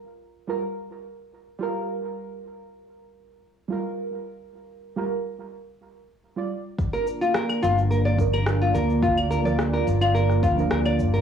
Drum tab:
SH |----------------|----------------|----------------|xxxxxxxxxxxxxxxx|
CL |----------------|----------------|----------------|-----x-----x----|
SD |----------------|----------------|----------------|----rr------r---|
BD |----------------|----------------|----------------|o---------o-----|

SH |xxxxxxxxxxxxxxxx|
CL |-x-----x-----x--|
SD |----rr---r--r---|
BD |o---------o-----|